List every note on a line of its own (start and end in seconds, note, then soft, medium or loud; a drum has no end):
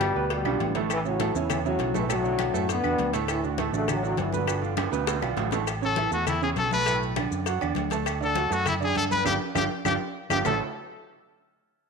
0.00 0.10 G1 loud
0.00 0.27 B2 medium
0.00 0.10 D3 medium
0.00 0.27 G3 loud
0.00 0.10 D4 medium
0.00 0.11 F4 medium
0.00 cowbell medium
0.00 high conga loud
0.00 low agogo loud
0.00 claves medium
0.15 0.43 D2 medium
0.15 0.40 B2 medium
0.15 0.40 B3 medium
0.15 0.40 B4 loud
0.15 high conga soft
0.30 0.73 B2 medium
0.30 0.73 G3 loud
0.30 cowbell loud
0.30 high conga soft
0.30 low agogo medium
0.45 0.59 B1 medium
0.45 0.70 D3 medium
0.45 0.70 D4 medium
0.45 0.70 F4 medium
0.45 high conga soft
0.45 high timbale medium
0.45 low agogo loud
0.45 claves medium
0.60 1.29 A1 loud
0.60 cowbell medium
0.60 high conga medium
0.60 low agogo medium
0.75 1.00 A2 loud
0.75 1.00 A3 medium
0.75 1.00 A4 medium
0.75 cowbell medium
0.75 high conga medium
0.75 low timbale medium
0.90 0.99 A2 medium
0.90 0.98 E3 loud
0.90 cowbell loud
0.90 high conga soft
0.90 low agogo loud
0.90 claves medium
0.90 maracas loud
1.05 1.34 A2 medium
1.05 1.17 C#3 medium
1.05 1.34 F#3 medium
1.05 1.17 C#4 medium
1.05 1.18 E4 medium
1.05 high conga soft
1.05 maracas soft
1.20 1.32 A2 medium
1.20 1.32 A3 medium
1.20 1.33 A4 medium
1.20 cowbell medium
1.20 high conga loud
1.20 low agogo medium
1.20 maracas soft
1.35 1.76 E2 loud
1.35 1.51 G#2 medium
1.35 1.59 C#3 medium
1.35 1.50 E3 medium
1.35 1.60 C#4 medium
1.35 1.60 E4 medium
1.35 high conga soft
1.35 maracas medium
1.50 1.58 A2 medium
1.50 1.58 E3 medium
1.50 cowbell loud
1.50 high conga soft
1.50 low conga medium
1.50 low agogo loud
1.50 claves medium
1.50 maracas medium
1.64 1.93 A2 medium
1.64 1.89 C#3 medium
1.64 1.93 F#3 loud
1.64 1.89 C#4 medium
1.64 1.90 E4 medium
1.64 high conga soft
1.64 maracas soft
1.79 2.49 B1 loud
1.79 cowbell medium
1.79 high conga medium
1.79 low agogo medium
1.79 maracas soft
1.94 2.03 G#2 medium
1.94 2.07 A2 medium
1.94 2.03 E3 medium
1.94 2.07 A3 loud
1.94 2.07 A4 medium
1.94 high conga medium
1.94 maracas medium
2.09 2.21 A2 medium
2.09 2.66 A2 medium
2.09 2.66 F#3 loud
2.09 2.21 A3 medium
2.09 2.22 A4 medium
2.09 cowbell loud
2.09 low agogo loud
2.09 claves medium
2.09 maracas loud
2.24 2.49 D3 medium
2.24 2.49 D4 medium
2.24 2.49 F#4 medium
2.24 high conga soft
2.24 maracas soft
2.39 cowbell medium
2.39 high conga loud
2.39 low agogo loud
2.39 claves medium
2.39 maracas soft
2.53 2.82 F#2 loud
2.53 2.78 A2 medium
2.53 2.78 A3 medium
2.53 2.79 A4 loud
2.53 high conga soft
2.53 maracas medium
2.69 3.11 D3 medium
2.69 3.11 B3 loud
2.69 cowbell loud
2.69 high conga soft
2.69 low agogo medium
2.69 maracas medium
2.83 2.98 E2 medium
2.83 3.08 D3 medium
2.83 3.08 D4 medium
2.83 3.09 F#4 medium
2.83 high conga soft
2.83 low agogo loud
2.83 claves medium
2.83 maracas soft
2.98 3.68 D2 loud
2.98 cowbell medium
2.98 high conga medium
2.98 low agogo medium
2.98 maracas soft
3.13 3.38 A2 loud
3.13 3.38 A3 loud
3.13 3.38 A4 loud
3.13 cowbell medium
3.13 maracas medium
3.28 3.43 A2 medium
3.28 3.44 E3 medium
3.28 cowbell loud
3.28 high conga soft
3.28 low agogo loud
3.28 claves medium
3.28 maracas medium
3.42 3.55 D3 medium
3.42 3.56 D4 medium
3.42 3.56 F#4 medium
3.42 high conga soft
3.42 maracas soft
3.58 3.71 A2 medium
3.58 3.71 A3 medium
3.58 3.71 A4 medium
3.58 cowbell medium
3.58 high conga loud
3.58 low agogo medium
3.58 maracas soft
3.73 4.15 A1 loud
3.73 3.88 C#3 medium
3.73 3.98 D3 medium
3.73 3.88 A3 loud
3.73 3.98 D4 medium
3.73 3.98 F#4 medium
3.73 high conga soft
3.73 maracas medium
3.88 4.04 A2 medium
3.88 4.04 F#3 loud
3.88 cowbell loud
3.88 high conga soft
3.88 low conga medium
3.88 low agogo loud
3.88 claves medium
3.88 maracas medium
4.03 4.18 A2 medium
4.03 4.27 D3 medium
4.03 4.18 F#3 loud
4.03 4.28 D4 medium
4.03 4.28 F#4 medium
4.03 high conga soft
4.03 maracas soft
4.17 4.87 G1 loud
4.17 4.34 A2 medium
4.17 4.34 E3 loud
4.17 cowbell medium
4.17 high conga loud
4.17 low agogo medium
4.17 maracas soft
4.33 4.76 F2 medium
4.33 4.45 B2 medium
4.33 4.76 D3 medium
4.33 4.45 B3 medium
4.33 4.46 B4 medium
4.33 high conga medium
4.33 maracas medium
4.47 4.60 B2 medium
4.47 4.60 B3 medium
4.47 4.60 B4 medium
4.47 cowbell loud
4.47 low agogo loud
4.47 claves medium
4.47 maracas medium
4.62 4.87 D3 medium
4.62 4.87 D4 medium
4.62 4.87 F4 medium
4.62 high conga soft
4.62 maracas soft
4.77 cowbell medium
4.77 high conga loud
4.77 high timbale loud
4.77 low agogo loud
4.77 claves medium
4.77 maracas soft
4.91 5.20 D2 loud
4.91 5.16 B2 medium
4.91 5.17 B3 medium
4.91 5.17 B4 medium
4.91 high conga soft
4.91 high timbale loud
4.91 maracas medium
5.07 cowbell loud
5.07 high bongo loud
5.07 high conga soft
5.07 low timbale loud
5.07 low agogo medium
5.07 maracas medium
5.22 5.36 B1 medium
5.22 5.47 D3 medium
5.22 5.47 D4 medium
5.22 5.47 F4 medium
5.22 high bongo medium
5.22 high conga soft
5.22 low agogo loud
5.22 claves medium
5.22 maracas soft
5.37 6.06 A1 medium
5.37 cowbell medium
5.37 high conga medium
5.37 low timbale loud
5.37 low agogo medium
5.37 maracas soft
5.51 5.65 A2 medium
5.51 5.65 A3 medium
5.51 5.65 A4 medium
5.51 cowbell medium
5.51 low bongo medium
5.51 high conga medium
5.51 low timbale medium
5.51 maracas medium
5.66 cowbell loud
5.66 high conga soft
5.66 low agogo loud
5.66 claves medium
5.66 maracas medium
5.81 5.94 C#3 medium
5.81 5.95 C#4 medium
5.81 6.11 A4 loud
5.81 5.95 C#5 medium
5.81 high conga soft
5.81 maracas soft
5.96 6.09 E3 medium
5.96 6.09 E4 medium
5.96 6.10 E5 medium
5.96 cowbell medium
5.96 high conga loud
5.96 low agogo medium
5.96 maracas soft
6.11 6.53 E2 loud
6.11 6.36 A3 medium
6.11 6.27 F#4 medium
6.11 6.36 A4 medium
6.11 6.37 A5 medium
6.11 high conga soft
6.11 maracas medium
6.27 6.41 E4 medium
6.27 cowbell loud
6.27 high conga soft
6.27 low conga medium
6.27 low agogo loud
6.27 claves medium
6.27 maracas medium
6.41 6.67 C#3 medium
6.41 6.67 C#4 medium
6.41 6.50 G#4 medium
6.41 6.67 C#5 medium
6.41 high conga soft
6.41 maracas soft
6.56 7.26 B1 loud
6.56 6.71 A4 loud
6.56 cowbell medium
6.56 high conga medium
6.56 low agogo medium
6.56 maracas soft
6.71 6.84 A3 medium
6.71 6.84 A4 medium
6.71 7.00 B4 loud
6.71 6.85 A5 medium
6.71 high conga medium
6.71 maracas medium
6.86 7.11 A2 medium
6.86 7.12 A3 medium
6.86 7.12 A4 medium
6.86 cowbell loud
6.86 high conga soft
6.86 low agogo loud
6.86 claves medium
6.86 maracas medium
7.03 maracas soft
7.16 7.41 D3 medium
7.16 7.41 D4 medium
7.16 7.41 D5 medium
7.16 cowbell medium
7.16 high conga loud
7.16 low agogo loud
7.16 claves medium
7.16 maracas soft
7.31 7.59 F#2 loud
7.31 high conga soft
7.31 maracas medium
7.46 7.59 F#3 medium
7.46 7.59 F#4 medium
7.46 7.59 F#5 medium
7.46 cowbell loud
7.46 low agogo medium
7.46 maracas medium
7.61 7.76 E2 medium
7.61 7.86 D3 medium
7.61 7.86 D4 medium
7.61 7.86 D5 medium
7.61 high conga soft
7.61 low agogo loud
7.61 claves medium
7.61 maracas soft
7.75 8.46 D2 loud
7.75 cowbell medium
7.75 high conga medium
7.75 low agogo medium
7.75 maracas soft
7.90 8.16 A3 medium
7.90 8.16 A4 medium
7.90 8.16 A5 medium
7.90 cowbell medium
7.90 high conga medium
7.90 maracas medium
8.06 cowbell loud
8.06 high conga soft
8.06 low agogo loud
8.06 claves medium
8.06 maracas medium
8.21 8.33 D3 medium
8.21 8.33 D4 medium
8.21 8.54 A4 loud
8.21 8.33 D5 medium
8.21 high conga soft
8.21 maracas soft
8.35 8.48 F#3 medium
8.35 8.48 F#4 medium
8.35 8.48 F#5 medium
8.35 cowbell medium
8.35 high conga loud
8.35 low agogo medium
8.35 maracas soft
8.50 8.92 F#2 loud
8.50 8.75 A3 medium
8.50 8.67 F#4 loud
8.50 8.75 A4 medium
8.50 8.75 A5 medium
8.50 high conga soft
8.50 maracas medium
8.66 8.74 E4 loud
8.66 cowbell loud
8.66 high conga soft
8.66 low conga medium
8.66 low agogo loud
8.66 claves medium
8.66 maracas medium
8.80 9.05 D3 medium
8.80 9.05 D4 medium
8.80 8.96 G#4 loud
8.80 9.05 D5 medium
8.80 high conga soft
8.80 maracas soft
8.96 9.24 G2 loud
8.96 9.04 A4 loud
8.96 cowbell medium
8.96 high conga medium
8.96 low agogo medium
8.96 maracas soft
9.10 9.23 B3 medium
9.10 9.23 B4 medium
9.10 9.25 B4 loud
9.10 9.23 B5 medium
9.10 high conga medium
9.10 maracas medium
9.25 9.37 G1 loud
9.25 9.35 D4 loud
9.25 9.35 F4 medium
9.25 9.35 G4 medium
9.25 9.33 G4 loud
9.25 cowbell medium
9.25 high conga loud
9.25 high timbale loud
9.25 claves loud
9.25 maracas loud
9.55 9.66 G1 loud
9.55 9.65 D4 loud
9.55 9.65 F4 loud
9.55 9.65 G4 loud
9.55 9.63 G4 loud
9.55 cowbell loud
9.55 high conga loud
9.55 high timbale loud
9.55 claves loud
9.55 maracas loud
9.85 9.96 G1 loud
9.85 9.95 D4 loud
9.85 9.95 F4 loud
9.85 9.95 G4 loud
9.85 9.93 G4 loud
9.85 cowbell loud
9.85 high conga loud
9.85 high timbale loud
9.85 claves loud
9.85 maracas medium
10.30 10.41 G1 medium
10.30 10.40 D4 loud
10.30 10.40 F4 loud
10.30 10.40 G4 loud
10.30 10.38 G4 loud
10.30 cowbell loud
10.30 high conga medium
10.30 high timbale loud
10.30 claves loud
10.30 maracas loud
10.44 10.59 A1 medium
10.44 10.59 A3 medium
10.44 10.59 E4 medium
10.44 10.59 A4 medium
10.44 10.60 A4 medium
10.44 10.59 C#5 medium
10.44 10.59 E5 medium
10.44 10.60 A5 loud
10.44 low bongo loud
10.44 low conga loud
10.44 low timbale loud
10.44 claves loud
10.44 maracas loud